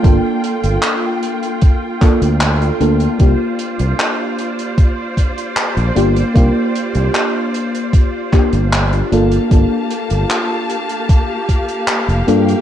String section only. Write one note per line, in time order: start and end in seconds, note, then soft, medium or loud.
0.00 3.16 A#3 medium
0.00 9.08 F4 medium
0.00 3.16 G5 medium
3.20 9.08 C5 medium
3.20 9.08 D5 medium
9.12 12.61 A#3 medium
9.12 12.61 G4 medium
9.12 12.61 F5 medium
9.12 12.25 A5 medium
12.28 12.61 G5 medium